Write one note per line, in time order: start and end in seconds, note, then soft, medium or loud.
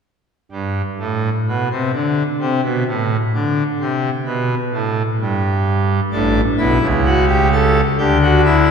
0.52 0.82 G2 medium
0.99 1.29 A2 medium
1.48 1.69 B2 medium
1.71 1.91 C3 medium
1.93 2.23 D3 medium
2.40 2.61 C3 medium
2.63 2.84 B2 medium
2.88 3.17 A2 medium
3.34 3.63 D3 medium
3.80 4.09 C3 medium
4.25 4.55 B2 medium
4.73 5.02 A2 medium
5.21 6.00 G2 medium
6.12 6.41 A1 medium
6.12 6.41 A2 medium
6.12 6.41 D4 medium
6.58 6.78 B1 medium
6.58 6.78 B2 medium
6.58 6.87 E4 medium
6.81 7.81 C#2 medium
6.81 7.81 C#3 medium
7.05 7.25 F#4 medium
7.28 7.48 G4 medium
7.52 7.81 A4 medium
7.98 8.71 D2 medium
7.98 8.71 D3 medium
7.98 8.18 G4 medium
8.22 8.41 F#4 medium
8.45 8.71 E4 medium